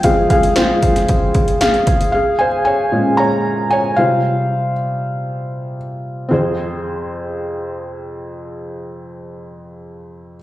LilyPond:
<<
  \new Staff \with { instrumentName = "Felt piano" } { \time 4/4 \key f \minor \tempo 4 = 115 <aes' f''>8 <aes' f''>8 <f' c''>2 <aes' f''>4 | <aes' f''>8 <c'' aes''>8 <des'' aes''>4 <des'' bes''>4 <des'' aes''>8 <c'' f''>8~ | <c'' f''>2. r4 | <c' f' aes' c''>1~ |
<c' f' aes' c''>1 | }
  \new Staff \with { instrumentName = "Felt piano" } { \clef bass \time 4/4 \key f \minor <f aes c'>1 | r4. <bes, aes des'>8 r4. <c g f'>8~ | <c g f'>4 r2. | f,1~ |
f,1 | }
  \new DrumStaff \with { instrumentName = "Drums" } \drummode { \time 4/4 <hh bd>8 <hh bd>16 hh16 <hh sn>8 <hh bd>16 <hh sn>16 <hh bd>8 <hh bd>16 hh16 <hh sn>16 hh16 <hh bd>16 hh16 | r4 r4 r4 r4 | r4 r4 r4 r4 | r4 r4 r4 r4 |
r4 r4 r4 r4 | }
>>